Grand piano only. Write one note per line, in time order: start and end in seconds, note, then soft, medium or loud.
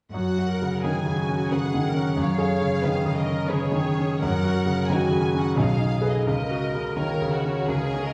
0.14 2.15 F#2 soft
0.38 0.75 F#4 soft
0.62 0.98 C#3 soft
0.84 1.07 D#3 soft
1.06 1.42 C#3 soft
1.28 1.65 C#4 soft
1.52 1.88 C#3 soft
1.74 1.97 D#3 soft
1.95 2.18 C#4 soft
2.17 4.18 F#2 medium
2.38 2.74 G#4 soft
2.61 2.96 C#3 soft
2.84 3.05 D#3 soft
3.05 3.41 C#3 soft
3.27 3.63 C#4 soft
3.49 3.88 C#3 soft
3.72 3.97 D#3 soft
3.99 4.23 C#4 soft
4.22 5.53 F#2 medium
4.44 4.81 F#4 soft
4.66 5.02 C#3 soft
4.90 5.12 D#3 soft
5.11 5.48 C#3 soft
5.35 5.57 C#4 soft
5.57 6.25 B1 soft
5.79 6.17 D#4 soft
6.01 6.24 G#4 soft
6.01 6.24 B4 soft
6.27 7.65 C#2 soft
6.50 6.88 F#4 soft
6.75 7.12 C#3 soft
6.97 7.21 D#3 soft
7.22 7.60 C#3 soft
7.44 7.68 C#4 soft
7.68 8.13 C#2 soft
7.94 8.13 C#4 soft